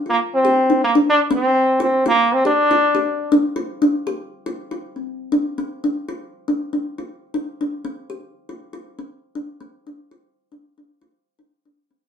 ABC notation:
X:1
M:4/4
L:1/16
Q:"Swing 16ths" 1/4=119
K:Gm
V:1 name="Kalimba"
F2 z G2 E2 D2 z C2 z2 F2 | F2 z G2 F2 G2 z D2 F2 D2 | G2 z F2 F2 C2 z D2 C2 D2 | F2 z D2 D2 F2 z E2 D2 C2 |
G2 z F2 F2 C2 z D2 C2 D2 | F2 z D2 D2 F2 z E2 D2 C2 |]
V:2 name="Trombone"
B,2 C4 B,2 D2 C4 C2 | B,2 C D8 z4 z | z16 | z16 |
z16 | z16 |]